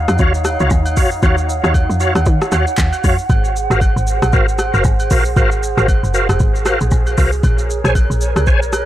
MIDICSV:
0, 0, Header, 1, 5, 480
1, 0, Start_track
1, 0, Tempo, 517241
1, 1138, Time_signature, 4, 2, 24, 8
1, 8216, End_track
2, 0, Start_track
2, 0, Title_t, "Flute section"
2, 0, Program_c, 0, 73
2, 0, Note_on_c, 0, 63, 78
2, 0, Note_on_c, 0, 73, 67
2, 0, Note_on_c, 0, 77, 83
2, 0, Note_on_c, 0, 78, 84
2, 2822, Note_off_c, 0, 77, 0
2, 2833, Note_off_c, 0, 73, 0
2, 3022, Note_off_c, 0, 63, 0
2, 3058, Note_on_c, 0, 72, 70
2, 3059, Note_on_c, 0, 68, 75
2, 6649, Note_off_c, 0, 78, 0
2, 6861, Note_off_c, 0, 72, 0
2, 6900, Note_on_c, 0, 73, 86
2, 6901, Note_on_c, 0, 70, 72
2, 8216, Note_off_c, 0, 68, 0
2, 8216, Note_off_c, 0, 70, 0
2, 8216, Note_off_c, 0, 73, 0
2, 8216, End_track
3, 0, Start_track
3, 0, Title_t, "Tonewheel organ"
3, 0, Program_c, 1, 16
3, 178, Note_on_c, 1, 66, 98
3, 181, Note_on_c, 1, 73, 90
3, 184, Note_on_c, 1, 77, 107
3, 302, Note_off_c, 1, 66, 0
3, 304, Note_off_c, 1, 73, 0
3, 305, Note_off_c, 1, 77, 0
3, 558, Note_on_c, 1, 66, 84
3, 561, Note_on_c, 1, 73, 77
3, 563, Note_on_c, 1, 77, 90
3, 647, Note_off_c, 1, 66, 0
3, 649, Note_off_c, 1, 73, 0
3, 650, Note_off_c, 1, 77, 0
3, 897, Note_on_c, 1, 66, 80
3, 900, Note_on_c, 1, 73, 70
3, 903, Note_on_c, 1, 77, 87
3, 1022, Note_off_c, 1, 66, 0
3, 1023, Note_off_c, 1, 73, 0
3, 1024, Note_off_c, 1, 77, 0
3, 1138, Note_on_c, 1, 66, 97
3, 1142, Note_on_c, 1, 73, 90
3, 1144, Note_on_c, 1, 77, 106
3, 1262, Note_off_c, 1, 66, 0
3, 1264, Note_off_c, 1, 73, 0
3, 1265, Note_off_c, 1, 77, 0
3, 1517, Note_on_c, 1, 66, 84
3, 1520, Note_on_c, 1, 73, 75
3, 1523, Note_on_c, 1, 77, 92
3, 1607, Note_off_c, 1, 66, 0
3, 1609, Note_off_c, 1, 73, 0
3, 1610, Note_off_c, 1, 77, 0
3, 1858, Note_on_c, 1, 66, 80
3, 1862, Note_on_c, 1, 73, 75
3, 1863, Note_on_c, 1, 77, 90
3, 1982, Note_off_c, 1, 66, 0
3, 1984, Note_off_c, 1, 73, 0
3, 1985, Note_off_c, 1, 77, 0
3, 2339, Note_on_c, 1, 66, 75
3, 2342, Note_on_c, 1, 73, 69
3, 2344, Note_on_c, 1, 77, 83
3, 2463, Note_off_c, 1, 66, 0
3, 2464, Note_off_c, 1, 73, 0
3, 2465, Note_off_c, 1, 77, 0
3, 2818, Note_on_c, 1, 66, 78
3, 2821, Note_on_c, 1, 73, 70
3, 2824, Note_on_c, 1, 77, 86
3, 2942, Note_off_c, 1, 66, 0
3, 2944, Note_off_c, 1, 73, 0
3, 2945, Note_off_c, 1, 77, 0
3, 3438, Note_on_c, 1, 66, 80
3, 3440, Note_on_c, 1, 70, 76
3, 3441, Note_on_c, 1, 72, 73
3, 3443, Note_on_c, 1, 77, 85
3, 3527, Note_off_c, 1, 66, 0
3, 3528, Note_off_c, 1, 70, 0
3, 3529, Note_off_c, 1, 72, 0
3, 3530, Note_off_c, 1, 77, 0
3, 4016, Note_on_c, 1, 66, 97
3, 4019, Note_on_c, 1, 70, 94
3, 4021, Note_on_c, 1, 72, 91
3, 4023, Note_on_c, 1, 77, 108
3, 4141, Note_off_c, 1, 66, 0
3, 4143, Note_off_c, 1, 70, 0
3, 4143, Note_off_c, 1, 72, 0
3, 4144, Note_off_c, 1, 77, 0
3, 4395, Note_on_c, 1, 66, 83
3, 4397, Note_on_c, 1, 70, 75
3, 4399, Note_on_c, 1, 72, 75
3, 4401, Note_on_c, 1, 77, 94
3, 4486, Note_off_c, 1, 66, 0
3, 4487, Note_off_c, 1, 70, 0
3, 4488, Note_off_c, 1, 72, 0
3, 4489, Note_off_c, 1, 77, 0
3, 4738, Note_on_c, 1, 66, 78
3, 4739, Note_on_c, 1, 70, 73
3, 4742, Note_on_c, 1, 72, 71
3, 4743, Note_on_c, 1, 77, 87
3, 4862, Note_off_c, 1, 66, 0
3, 4863, Note_off_c, 1, 70, 0
3, 4864, Note_off_c, 1, 72, 0
3, 4865, Note_off_c, 1, 77, 0
3, 4978, Note_on_c, 1, 66, 93
3, 4980, Note_on_c, 1, 70, 87
3, 4982, Note_on_c, 1, 72, 87
3, 4984, Note_on_c, 1, 77, 109
3, 5102, Note_off_c, 1, 66, 0
3, 5103, Note_off_c, 1, 70, 0
3, 5104, Note_off_c, 1, 72, 0
3, 5105, Note_off_c, 1, 77, 0
3, 5357, Note_on_c, 1, 66, 80
3, 5358, Note_on_c, 1, 70, 76
3, 5360, Note_on_c, 1, 72, 77
3, 5362, Note_on_c, 1, 77, 92
3, 5447, Note_off_c, 1, 66, 0
3, 5448, Note_off_c, 1, 70, 0
3, 5448, Note_off_c, 1, 72, 0
3, 5450, Note_off_c, 1, 77, 0
3, 5698, Note_on_c, 1, 66, 82
3, 5700, Note_on_c, 1, 70, 72
3, 5701, Note_on_c, 1, 72, 74
3, 5703, Note_on_c, 1, 77, 88
3, 5822, Note_off_c, 1, 66, 0
3, 5823, Note_off_c, 1, 70, 0
3, 5824, Note_off_c, 1, 72, 0
3, 5825, Note_off_c, 1, 77, 0
3, 6177, Note_on_c, 1, 66, 77
3, 6179, Note_on_c, 1, 70, 69
3, 6181, Note_on_c, 1, 72, 73
3, 6183, Note_on_c, 1, 77, 85
3, 6302, Note_off_c, 1, 66, 0
3, 6303, Note_off_c, 1, 70, 0
3, 6303, Note_off_c, 1, 72, 0
3, 6305, Note_off_c, 1, 77, 0
3, 6658, Note_on_c, 1, 66, 78
3, 6660, Note_on_c, 1, 70, 72
3, 6662, Note_on_c, 1, 72, 72
3, 6664, Note_on_c, 1, 77, 85
3, 6782, Note_off_c, 1, 66, 0
3, 6783, Note_off_c, 1, 70, 0
3, 6784, Note_off_c, 1, 72, 0
3, 6785, Note_off_c, 1, 77, 0
3, 7277, Note_on_c, 1, 72, 79
3, 7280, Note_on_c, 1, 73, 71
3, 7283, Note_on_c, 1, 80, 91
3, 7367, Note_off_c, 1, 72, 0
3, 7368, Note_off_c, 1, 73, 0
3, 7370, Note_off_c, 1, 80, 0
3, 7857, Note_on_c, 1, 72, 97
3, 7860, Note_on_c, 1, 73, 95
3, 7863, Note_on_c, 1, 80, 104
3, 7982, Note_off_c, 1, 72, 0
3, 7983, Note_off_c, 1, 73, 0
3, 7984, Note_off_c, 1, 80, 0
3, 8216, End_track
4, 0, Start_track
4, 0, Title_t, "Log drum bass"
4, 0, Program_c, 2, 39
4, 79, Note_on_c, 2, 41, 95
4, 171, Note_off_c, 2, 41, 0
4, 179, Note_on_c, 2, 39, 110
4, 527, Note_off_c, 2, 39, 0
4, 560, Note_on_c, 2, 37, 94
4, 652, Note_off_c, 2, 37, 0
4, 658, Note_on_c, 2, 39, 101
4, 901, Note_on_c, 2, 41, 92
4, 915, Note_off_c, 2, 39, 0
4, 1120, Note_off_c, 2, 41, 0
4, 1138, Note_on_c, 2, 39, 119
4, 1487, Note_off_c, 2, 39, 0
4, 1519, Note_on_c, 2, 39, 101
4, 1739, Note_off_c, 2, 39, 0
4, 1759, Note_on_c, 2, 41, 96
4, 1979, Note_off_c, 2, 41, 0
4, 1998, Note_on_c, 2, 39, 97
4, 2090, Note_off_c, 2, 39, 0
4, 2101, Note_on_c, 2, 51, 114
4, 2228, Note_off_c, 2, 51, 0
4, 2338, Note_on_c, 2, 39, 97
4, 2466, Note_off_c, 2, 39, 0
4, 2579, Note_on_c, 2, 39, 99
4, 2706, Note_off_c, 2, 39, 0
4, 2823, Note_on_c, 2, 41, 90
4, 2948, Note_off_c, 2, 41, 0
4, 3058, Note_on_c, 2, 32, 109
4, 3407, Note_off_c, 2, 32, 0
4, 3436, Note_on_c, 2, 32, 98
4, 3657, Note_off_c, 2, 32, 0
4, 3678, Note_on_c, 2, 32, 98
4, 3898, Note_off_c, 2, 32, 0
4, 3918, Note_on_c, 2, 34, 92
4, 4010, Note_off_c, 2, 34, 0
4, 4021, Note_on_c, 2, 32, 106
4, 4368, Note_off_c, 2, 32, 0
4, 4398, Note_on_c, 2, 30, 97
4, 4490, Note_off_c, 2, 30, 0
4, 4499, Note_on_c, 2, 32, 102
4, 4719, Note_off_c, 2, 32, 0
4, 4741, Note_on_c, 2, 34, 87
4, 4960, Note_off_c, 2, 34, 0
4, 4979, Note_on_c, 2, 32, 108
4, 5327, Note_off_c, 2, 32, 0
4, 5359, Note_on_c, 2, 32, 103
4, 5579, Note_off_c, 2, 32, 0
4, 5599, Note_on_c, 2, 30, 93
4, 5819, Note_off_c, 2, 30, 0
4, 5839, Note_on_c, 2, 29, 102
4, 5931, Note_off_c, 2, 29, 0
4, 5942, Note_on_c, 2, 32, 103
4, 6289, Note_off_c, 2, 32, 0
4, 6320, Note_on_c, 2, 34, 91
4, 6411, Note_off_c, 2, 34, 0
4, 6419, Note_on_c, 2, 34, 93
4, 6639, Note_off_c, 2, 34, 0
4, 6663, Note_on_c, 2, 36, 87
4, 6881, Note_off_c, 2, 36, 0
4, 6899, Note_on_c, 2, 34, 112
4, 7247, Note_off_c, 2, 34, 0
4, 7279, Note_on_c, 2, 34, 102
4, 7499, Note_off_c, 2, 34, 0
4, 7517, Note_on_c, 2, 34, 93
4, 7738, Note_off_c, 2, 34, 0
4, 7757, Note_on_c, 2, 37, 92
4, 7862, Note_on_c, 2, 34, 104
4, 7876, Note_off_c, 2, 37, 0
4, 8209, Note_off_c, 2, 34, 0
4, 8216, End_track
5, 0, Start_track
5, 0, Title_t, "Drums"
5, 75, Note_on_c, 9, 67, 78
5, 76, Note_on_c, 9, 37, 99
5, 78, Note_on_c, 9, 82, 58
5, 168, Note_off_c, 9, 67, 0
5, 169, Note_off_c, 9, 37, 0
5, 171, Note_off_c, 9, 82, 0
5, 171, Note_on_c, 9, 82, 76
5, 180, Note_on_c, 9, 36, 125
5, 263, Note_off_c, 9, 82, 0
5, 273, Note_off_c, 9, 36, 0
5, 319, Note_on_c, 9, 82, 60
5, 412, Note_off_c, 9, 82, 0
5, 413, Note_on_c, 9, 82, 99
5, 415, Note_on_c, 9, 37, 96
5, 420, Note_on_c, 9, 67, 88
5, 506, Note_off_c, 9, 82, 0
5, 507, Note_off_c, 9, 37, 0
5, 513, Note_off_c, 9, 67, 0
5, 556, Note_on_c, 9, 82, 59
5, 648, Note_off_c, 9, 82, 0
5, 651, Note_on_c, 9, 82, 87
5, 657, Note_on_c, 9, 77, 74
5, 658, Note_on_c, 9, 36, 96
5, 743, Note_off_c, 9, 82, 0
5, 750, Note_off_c, 9, 77, 0
5, 751, Note_off_c, 9, 36, 0
5, 794, Note_on_c, 9, 67, 76
5, 796, Note_on_c, 9, 82, 63
5, 887, Note_off_c, 9, 67, 0
5, 889, Note_off_c, 9, 82, 0
5, 897, Note_on_c, 9, 46, 77
5, 897, Note_on_c, 9, 82, 96
5, 901, Note_on_c, 9, 36, 98
5, 989, Note_off_c, 9, 46, 0
5, 989, Note_off_c, 9, 82, 0
5, 994, Note_off_c, 9, 36, 0
5, 1030, Note_on_c, 9, 82, 57
5, 1123, Note_off_c, 9, 82, 0
5, 1138, Note_on_c, 9, 82, 72
5, 1139, Note_on_c, 9, 36, 121
5, 1139, Note_on_c, 9, 67, 72
5, 1231, Note_off_c, 9, 82, 0
5, 1232, Note_off_c, 9, 36, 0
5, 1232, Note_off_c, 9, 67, 0
5, 1276, Note_on_c, 9, 82, 55
5, 1369, Note_off_c, 9, 82, 0
5, 1386, Note_on_c, 9, 82, 92
5, 1479, Note_off_c, 9, 82, 0
5, 1523, Note_on_c, 9, 37, 94
5, 1524, Note_on_c, 9, 82, 54
5, 1616, Note_off_c, 9, 37, 0
5, 1617, Note_off_c, 9, 82, 0
5, 1617, Note_on_c, 9, 67, 81
5, 1619, Note_on_c, 9, 36, 93
5, 1622, Note_on_c, 9, 82, 67
5, 1710, Note_off_c, 9, 67, 0
5, 1712, Note_off_c, 9, 36, 0
5, 1715, Note_off_c, 9, 82, 0
5, 1767, Note_on_c, 9, 82, 58
5, 1857, Note_off_c, 9, 82, 0
5, 1857, Note_on_c, 9, 82, 102
5, 1949, Note_off_c, 9, 82, 0
5, 1999, Note_on_c, 9, 37, 101
5, 1999, Note_on_c, 9, 67, 77
5, 2001, Note_on_c, 9, 82, 53
5, 2092, Note_off_c, 9, 37, 0
5, 2092, Note_off_c, 9, 67, 0
5, 2094, Note_off_c, 9, 82, 0
5, 2094, Note_on_c, 9, 82, 74
5, 2101, Note_on_c, 9, 36, 127
5, 2187, Note_off_c, 9, 82, 0
5, 2194, Note_off_c, 9, 36, 0
5, 2243, Note_on_c, 9, 37, 107
5, 2243, Note_on_c, 9, 82, 59
5, 2335, Note_off_c, 9, 37, 0
5, 2335, Note_off_c, 9, 82, 0
5, 2337, Note_on_c, 9, 82, 101
5, 2338, Note_on_c, 9, 37, 94
5, 2340, Note_on_c, 9, 67, 88
5, 2429, Note_off_c, 9, 82, 0
5, 2431, Note_off_c, 9, 37, 0
5, 2433, Note_off_c, 9, 67, 0
5, 2478, Note_on_c, 9, 82, 57
5, 2571, Note_off_c, 9, 82, 0
5, 2573, Note_on_c, 9, 82, 90
5, 2577, Note_on_c, 9, 77, 79
5, 2579, Note_on_c, 9, 36, 95
5, 2579, Note_on_c, 9, 39, 87
5, 2665, Note_off_c, 9, 82, 0
5, 2669, Note_off_c, 9, 77, 0
5, 2672, Note_off_c, 9, 36, 0
5, 2672, Note_off_c, 9, 39, 0
5, 2715, Note_on_c, 9, 67, 74
5, 2718, Note_on_c, 9, 82, 63
5, 2808, Note_off_c, 9, 67, 0
5, 2811, Note_off_c, 9, 82, 0
5, 2819, Note_on_c, 9, 46, 76
5, 2819, Note_on_c, 9, 82, 87
5, 2822, Note_on_c, 9, 36, 101
5, 2912, Note_off_c, 9, 46, 0
5, 2912, Note_off_c, 9, 82, 0
5, 2915, Note_off_c, 9, 36, 0
5, 2953, Note_on_c, 9, 82, 58
5, 3045, Note_off_c, 9, 82, 0
5, 3058, Note_on_c, 9, 82, 74
5, 3059, Note_on_c, 9, 36, 117
5, 3060, Note_on_c, 9, 67, 77
5, 3151, Note_off_c, 9, 36, 0
5, 3151, Note_off_c, 9, 82, 0
5, 3153, Note_off_c, 9, 67, 0
5, 3197, Note_on_c, 9, 82, 55
5, 3290, Note_off_c, 9, 82, 0
5, 3306, Note_on_c, 9, 82, 90
5, 3399, Note_off_c, 9, 82, 0
5, 3442, Note_on_c, 9, 37, 94
5, 3443, Note_on_c, 9, 82, 54
5, 3534, Note_off_c, 9, 37, 0
5, 3536, Note_off_c, 9, 82, 0
5, 3538, Note_on_c, 9, 67, 85
5, 3539, Note_on_c, 9, 36, 94
5, 3541, Note_on_c, 9, 82, 70
5, 3631, Note_off_c, 9, 36, 0
5, 3631, Note_off_c, 9, 67, 0
5, 3633, Note_off_c, 9, 82, 0
5, 3686, Note_on_c, 9, 82, 57
5, 3778, Note_off_c, 9, 82, 0
5, 3778, Note_on_c, 9, 82, 98
5, 3870, Note_off_c, 9, 82, 0
5, 3919, Note_on_c, 9, 37, 107
5, 3919, Note_on_c, 9, 67, 78
5, 3921, Note_on_c, 9, 82, 57
5, 4011, Note_off_c, 9, 67, 0
5, 4012, Note_off_c, 9, 37, 0
5, 4014, Note_off_c, 9, 82, 0
5, 4014, Note_on_c, 9, 82, 72
5, 4021, Note_on_c, 9, 36, 122
5, 4107, Note_off_c, 9, 82, 0
5, 4114, Note_off_c, 9, 36, 0
5, 4161, Note_on_c, 9, 82, 60
5, 4254, Note_off_c, 9, 82, 0
5, 4255, Note_on_c, 9, 82, 102
5, 4256, Note_on_c, 9, 37, 94
5, 4261, Note_on_c, 9, 67, 87
5, 4347, Note_off_c, 9, 82, 0
5, 4349, Note_off_c, 9, 37, 0
5, 4354, Note_off_c, 9, 67, 0
5, 4398, Note_on_c, 9, 82, 59
5, 4491, Note_off_c, 9, 82, 0
5, 4491, Note_on_c, 9, 82, 85
5, 4498, Note_on_c, 9, 36, 99
5, 4498, Note_on_c, 9, 77, 77
5, 4584, Note_off_c, 9, 82, 0
5, 4591, Note_off_c, 9, 36, 0
5, 4591, Note_off_c, 9, 77, 0
5, 4637, Note_on_c, 9, 67, 75
5, 4637, Note_on_c, 9, 82, 63
5, 4730, Note_off_c, 9, 67, 0
5, 4730, Note_off_c, 9, 82, 0
5, 4738, Note_on_c, 9, 46, 74
5, 4738, Note_on_c, 9, 82, 93
5, 4741, Note_on_c, 9, 36, 96
5, 4831, Note_off_c, 9, 46, 0
5, 4831, Note_off_c, 9, 82, 0
5, 4834, Note_off_c, 9, 36, 0
5, 4871, Note_on_c, 9, 82, 59
5, 4964, Note_off_c, 9, 82, 0
5, 4979, Note_on_c, 9, 36, 117
5, 4979, Note_on_c, 9, 82, 73
5, 4982, Note_on_c, 9, 67, 72
5, 5071, Note_off_c, 9, 82, 0
5, 5072, Note_off_c, 9, 36, 0
5, 5075, Note_off_c, 9, 67, 0
5, 5117, Note_on_c, 9, 82, 55
5, 5210, Note_off_c, 9, 82, 0
5, 5226, Note_on_c, 9, 82, 95
5, 5318, Note_off_c, 9, 82, 0
5, 5361, Note_on_c, 9, 37, 94
5, 5363, Note_on_c, 9, 82, 56
5, 5454, Note_off_c, 9, 37, 0
5, 5456, Note_off_c, 9, 82, 0
5, 5459, Note_on_c, 9, 36, 94
5, 5460, Note_on_c, 9, 67, 80
5, 5463, Note_on_c, 9, 82, 71
5, 5552, Note_off_c, 9, 36, 0
5, 5553, Note_off_c, 9, 67, 0
5, 5555, Note_off_c, 9, 82, 0
5, 5607, Note_on_c, 9, 82, 56
5, 5699, Note_off_c, 9, 82, 0
5, 5699, Note_on_c, 9, 82, 97
5, 5792, Note_off_c, 9, 82, 0
5, 5838, Note_on_c, 9, 67, 74
5, 5841, Note_on_c, 9, 37, 103
5, 5843, Note_on_c, 9, 82, 57
5, 5931, Note_off_c, 9, 67, 0
5, 5934, Note_off_c, 9, 37, 0
5, 5935, Note_off_c, 9, 82, 0
5, 5935, Note_on_c, 9, 82, 75
5, 5942, Note_on_c, 9, 36, 124
5, 6027, Note_off_c, 9, 82, 0
5, 6034, Note_off_c, 9, 36, 0
5, 6082, Note_on_c, 9, 82, 61
5, 6174, Note_off_c, 9, 82, 0
5, 6175, Note_on_c, 9, 82, 105
5, 6177, Note_on_c, 9, 37, 97
5, 6182, Note_on_c, 9, 67, 89
5, 6268, Note_off_c, 9, 82, 0
5, 6269, Note_off_c, 9, 37, 0
5, 6275, Note_off_c, 9, 67, 0
5, 6317, Note_on_c, 9, 82, 57
5, 6410, Note_off_c, 9, 82, 0
5, 6412, Note_on_c, 9, 82, 88
5, 6418, Note_on_c, 9, 36, 97
5, 6419, Note_on_c, 9, 77, 77
5, 6505, Note_off_c, 9, 82, 0
5, 6511, Note_off_c, 9, 36, 0
5, 6511, Note_off_c, 9, 77, 0
5, 6557, Note_on_c, 9, 82, 64
5, 6559, Note_on_c, 9, 67, 74
5, 6650, Note_off_c, 9, 82, 0
5, 6652, Note_off_c, 9, 67, 0
5, 6659, Note_on_c, 9, 46, 77
5, 6659, Note_on_c, 9, 82, 92
5, 6662, Note_on_c, 9, 36, 99
5, 6751, Note_off_c, 9, 46, 0
5, 6751, Note_off_c, 9, 82, 0
5, 6755, Note_off_c, 9, 36, 0
5, 6792, Note_on_c, 9, 82, 56
5, 6885, Note_off_c, 9, 82, 0
5, 6899, Note_on_c, 9, 36, 116
5, 6900, Note_on_c, 9, 82, 72
5, 6904, Note_on_c, 9, 67, 77
5, 6992, Note_off_c, 9, 36, 0
5, 6993, Note_off_c, 9, 82, 0
5, 6996, Note_off_c, 9, 67, 0
5, 7038, Note_on_c, 9, 82, 57
5, 7131, Note_off_c, 9, 82, 0
5, 7147, Note_on_c, 9, 82, 89
5, 7240, Note_off_c, 9, 82, 0
5, 7283, Note_on_c, 9, 37, 93
5, 7285, Note_on_c, 9, 82, 54
5, 7376, Note_off_c, 9, 37, 0
5, 7378, Note_off_c, 9, 82, 0
5, 7380, Note_on_c, 9, 36, 91
5, 7381, Note_on_c, 9, 67, 82
5, 7383, Note_on_c, 9, 82, 72
5, 7473, Note_off_c, 9, 36, 0
5, 7473, Note_off_c, 9, 67, 0
5, 7476, Note_off_c, 9, 82, 0
5, 7527, Note_on_c, 9, 82, 59
5, 7620, Note_off_c, 9, 82, 0
5, 7620, Note_on_c, 9, 82, 98
5, 7713, Note_off_c, 9, 82, 0
5, 7759, Note_on_c, 9, 67, 76
5, 7760, Note_on_c, 9, 37, 105
5, 7762, Note_on_c, 9, 82, 56
5, 7852, Note_off_c, 9, 67, 0
5, 7853, Note_off_c, 9, 37, 0
5, 7855, Note_off_c, 9, 82, 0
5, 7855, Note_on_c, 9, 82, 73
5, 7862, Note_on_c, 9, 36, 116
5, 7948, Note_off_c, 9, 82, 0
5, 7954, Note_off_c, 9, 36, 0
5, 8004, Note_on_c, 9, 82, 60
5, 8097, Note_off_c, 9, 82, 0
5, 8098, Note_on_c, 9, 82, 101
5, 8099, Note_on_c, 9, 37, 93
5, 8104, Note_on_c, 9, 67, 89
5, 8191, Note_off_c, 9, 82, 0
5, 8192, Note_off_c, 9, 37, 0
5, 8197, Note_off_c, 9, 67, 0
5, 8216, End_track
0, 0, End_of_file